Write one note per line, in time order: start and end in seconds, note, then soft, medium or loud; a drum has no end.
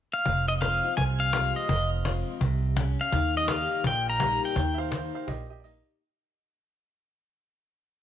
0.14 0.48 F5 medium
0.25 0.78 F1 medium
0.25 0.95 F2 medium
0.25 cajon bass loud
0.25 cajon slap soft
0.48 0.53 D#5 medium
0.48 cajon slap soft
0.55 cajon slap soft
0.61 0.83 F3 soft
0.61 0.84 G#3 soft
0.61 0.84 C4 soft
0.61 0.83 F4 medium
0.61 0.97 F5 medium
0.61 cajon bass medium
0.61 cajon slap medium
0.84 0.98 C4 soft
0.84 0.97 F4 soft
0.84 cajon slap soft
0.97 1.50 C2 medium
0.97 1.66 C3 medium
0.97 1.03 G#5 loud
0.97 cajon bass loud
0.97 cajon slap soft
1.20 1.57 F5 medium
1.20 cajon slap soft
1.33 1.68 F3 medium
1.33 1.68 G#3 medium
1.33 1.68 C4 medium
1.33 1.69 F4 medium
1.33 cajon bass medium
1.33 cajon slap loud
1.56 1.89 D#5 medium
1.56 cajon slap soft
1.69 2.22 F1 medium
1.69 2.38 F2 medium
1.69 cajon bass loud
1.69 cajon slap soft
1.92 cajon slap soft
1.99 cajon slap soft
2.04 2.39 F3 soft
2.04 2.40 G#3 soft
2.04 2.40 C4 soft
2.04 2.40 F4 medium
2.04 cajon bass medium
2.04 cajon slap loud
2.28 cajon slap soft
2.41 2.93 C2 medium
2.41 2.75 C3 medium
2.41 cajon bass medium
2.41 cajon slap soft
2.64 cajon slap soft
2.76 3.11 C#4 medium
2.76 cajon bass medium
2.76 cajon slap medium
3.00 3.37 F5 medium
3.00 cajon slap soft
3.12 3.65 D#2 medium
3.12 3.82 D#3 medium
3.12 cajon bass loud
3.12 cajon slap soft
3.35 3.50 D#5 medium
3.35 cajon slap soft
3.42 cajon slap soft
3.48 3.83 G3 soft
3.48 3.83 A#3 soft
3.48 3.84 D#4 soft
3.48 3.84 G4 medium
3.48 3.86 F5 medium
3.48 cajon bass medium
3.48 cajon slap loud
3.71 cajon slap soft
3.77 cajon slap soft
3.84 4.37 A#1 medium
3.84 4.54 A#2 medium
3.84 4.09 G5 medium
3.84 cajon bass loud
3.84 cajon slap soft
4.07 4.42 A#5 medium
4.07 cajon slap soft
4.20 4.55 G3 medium
4.20 4.55 A#3 medium
4.20 4.55 D#4 medium
4.20 4.56 G4 medium
4.20 cajon bass medium
4.20 cajon slap loud
4.43 4.78 G5 medium
4.43 cajon slap soft
4.56 5.08 D#2 medium
4.56 5.25 D#3 medium
4.56 cajon bass medium
4.56 cajon slap soft
4.74 4.76 E5 medium
4.78 4.90 C5 medium
4.78 4.91 F5 medium
4.78 cajon slap soft
4.85 cajon slap soft
4.91 5.26 G3 soft
4.91 5.27 A#3 soft
4.91 5.27 D#4 medium
4.91 5.28 G4 medium
4.91 5.13 C5 medium
4.91 5.14 F5 medium
4.91 cajon bass medium
4.91 cajon slap loud
5.15 5.27 C5 medium
5.15 5.28 F5 medium
5.15 cajon slap soft
5.27 5.80 A#1 medium
5.27 5.97 A#2 medium
5.27 5.48 G4 medium
5.27 5.49 D#5 medium
5.27 cajon bass loud
5.27 cajon slap soft
5.50 5.62 G4 medium
5.50 5.63 D#5 medium
5.60 5.63 D5 soft
5.64 5.98 G3 medium
5.64 5.99 A#3 medium
5.64 5.99 D#4 medium
5.64 5.99 G4 medium
5.64 5.92 D#5 medium